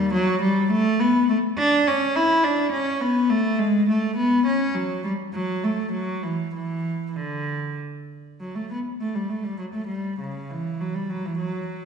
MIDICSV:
0, 0, Header, 1, 2, 480
1, 0, Start_track
1, 0, Tempo, 581395
1, 1058, Time_signature, 3, 2, 24, 8
1, 4900, Tempo, 616016
1, 6820, Tempo, 596421
1, 9598, End_track
2, 0, Start_track
2, 0, Title_t, "Cello"
2, 0, Program_c, 0, 42
2, 0, Note_on_c, 0, 55, 95
2, 104, Note_off_c, 0, 55, 0
2, 113, Note_on_c, 0, 54, 101
2, 344, Note_off_c, 0, 54, 0
2, 351, Note_on_c, 0, 55, 85
2, 580, Note_off_c, 0, 55, 0
2, 589, Note_on_c, 0, 57, 99
2, 817, Note_off_c, 0, 57, 0
2, 825, Note_on_c, 0, 59, 90
2, 1062, Note_off_c, 0, 59, 0
2, 1067, Note_on_c, 0, 57, 77
2, 1133, Note_off_c, 0, 57, 0
2, 1304, Note_on_c, 0, 62, 99
2, 1538, Note_off_c, 0, 62, 0
2, 1547, Note_on_c, 0, 61, 86
2, 1783, Note_off_c, 0, 61, 0
2, 1783, Note_on_c, 0, 64, 95
2, 2015, Note_on_c, 0, 62, 83
2, 2019, Note_off_c, 0, 64, 0
2, 2248, Note_on_c, 0, 61, 89
2, 2253, Note_off_c, 0, 62, 0
2, 2483, Note_off_c, 0, 61, 0
2, 2487, Note_on_c, 0, 59, 87
2, 2725, Note_on_c, 0, 57, 95
2, 2726, Note_off_c, 0, 59, 0
2, 2964, Note_on_c, 0, 56, 86
2, 2966, Note_off_c, 0, 57, 0
2, 3206, Note_off_c, 0, 56, 0
2, 3212, Note_on_c, 0, 57, 79
2, 3441, Note_on_c, 0, 59, 86
2, 3444, Note_off_c, 0, 57, 0
2, 3678, Note_off_c, 0, 59, 0
2, 3686, Note_on_c, 0, 61, 75
2, 3919, Note_on_c, 0, 54, 76
2, 3922, Note_off_c, 0, 61, 0
2, 4164, Note_off_c, 0, 54, 0
2, 4165, Note_on_c, 0, 55, 74
2, 4231, Note_off_c, 0, 55, 0
2, 4407, Note_on_c, 0, 54, 81
2, 4647, Note_off_c, 0, 54, 0
2, 4658, Note_on_c, 0, 57, 70
2, 4891, Note_on_c, 0, 54, 73
2, 4901, Note_off_c, 0, 57, 0
2, 5127, Note_off_c, 0, 54, 0
2, 5129, Note_on_c, 0, 52, 60
2, 5367, Note_off_c, 0, 52, 0
2, 5376, Note_on_c, 0, 52, 67
2, 5795, Note_off_c, 0, 52, 0
2, 5808, Note_on_c, 0, 52, 38
2, 5855, Note_on_c, 0, 50, 56
2, 5862, Note_off_c, 0, 52, 0
2, 6334, Note_off_c, 0, 50, 0
2, 6824, Note_on_c, 0, 54, 50
2, 6935, Note_off_c, 0, 54, 0
2, 6943, Note_on_c, 0, 57, 44
2, 7063, Note_off_c, 0, 57, 0
2, 7069, Note_on_c, 0, 59, 53
2, 7133, Note_off_c, 0, 59, 0
2, 7308, Note_on_c, 0, 57, 61
2, 7422, Note_off_c, 0, 57, 0
2, 7426, Note_on_c, 0, 55, 50
2, 7543, Note_off_c, 0, 55, 0
2, 7543, Note_on_c, 0, 57, 50
2, 7660, Note_on_c, 0, 55, 53
2, 7661, Note_off_c, 0, 57, 0
2, 7777, Note_on_c, 0, 54, 58
2, 7779, Note_off_c, 0, 55, 0
2, 7826, Note_off_c, 0, 54, 0
2, 7898, Note_on_c, 0, 57, 53
2, 8008, Note_on_c, 0, 55, 50
2, 8018, Note_off_c, 0, 57, 0
2, 8258, Note_off_c, 0, 55, 0
2, 8267, Note_on_c, 0, 49, 53
2, 8511, Note_off_c, 0, 49, 0
2, 8516, Note_on_c, 0, 52, 53
2, 8756, Note_off_c, 0, 52, 0
2, 8759, Note_on_c, 0, 54, 59
2, 8872, Note_on_c, 0, 55, 52
2, 8877, Note_off_c, 0, 54, 0
2, 8992, Note_on_c, 0, 54, 57
2, 8993, Note_off_c, 0, 55, 0
2, 9112, Note_off_c, 0, 54, 0
2, 9117, Note_on_c, 0, 52, 57
2, 9221, Note_on_c, 0, 54, 56
2, 9233, Note_off_c, 0, 52, 0
2, 9598, Note_off_c, 0, 54, 0
2, 9598, End_track
0, 0, End_of_file